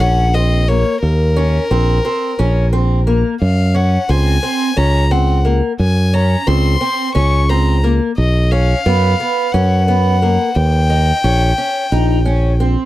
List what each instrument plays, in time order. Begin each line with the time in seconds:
0.00 fingered electric bass A#1, twelve-string acoustic guitar C#4, violin F#5
0.34 twelve-string acoustic guitar C4, violin D#5
0.68 twelve-string acoustic guitar A#3, violin C#5
1.02 fingered electric bass D#2, violin A#4
1.36 twelve-string acoustic guitar C#4
1.71 fingered electric bass A#1, twelve-string acoustic guitar C4
2.05 twelve-string acoustic guitar C4
2.39 fingered electric bass A#1, twelve-string acoustic guitar C#4
2.73 twelve-string acoustic guitar C4
3.07 twelve-string acoustic guitar A#3
3.42 fingered electric bass F#2, violin F5
3.75 twelve-string acoustic guitar C#4, violin F#5
4.09 fingered electric bass C#2, twelve-string acoustic guitar C4, violin G#5
4.43 twelve-string acoustic guitar C4
4.77 fingered electric bass C#2, twelve-string acoustic guitar C#4, violin A#5
5.11 twelve-string acoustic guitar C4, violin F#5
5.45 twelve-string acoustic guitar A#3
5.79 fingered electric bass F#2, violin G#5
6.13 twelve-string acoustic guitar C#4, violin A#5
6.47 fingered electric bass C#2, twelve-string acoustic guitar C4, violin C6
6.81 twelve-string acoustic guitar C4
7.15 fingered electric bass C#2, twelve-string acoustic guitar C#4, violin C#6
7.50 twelve-string acoustic guitar C4, violin A#5
7.84 twelve-string acoustic guitar A#3
8.18 fingered electric bass B1, violin D#5
8.51 twelve-string acoustic guitar C#4, violin F5
8.86 fingered electric bass F#2, twelve-string acoustic guitar B3
9.20 twelve-string acoustic guitar B3
9.52 fingered electric bass F#2, twelve-string acoustic guitar C#4, violin F#5
9.88 twelve-string acoustic guitar B3
10.22 twelve-string acoustic guitar A#3
10.55 fingered electric bass D#2, violin G5
10.90 twelve-string acoustic guitar D#4
11.24 fingered electric bass A#1, twelve-string acoustic guitar C#4
11.58 twelve-string acoustic guitar C#4
11.92 fingered electric bass A#1, twelve-string acoustic guitar D#4
12.25 twelve-string acoustic guitar C#4
12.60 twelve-string acoustic guitar C4